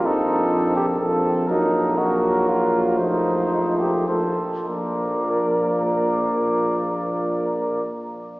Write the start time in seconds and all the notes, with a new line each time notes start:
Already playing: A#1
0.04 F3 C4 D#4 A4
0.76 G4
0.99 F3 C4 A4
1.47 A#1 F#3 A#3 D#4 A#4
1.95 F#3 A#3 F#4 A#4
2.48 F4
2.97 F3 A3 D#4 C5
3.79 G4
4.07 F3 A3 A4 C5
4.66 A#1 F3 A#3 A#4 D5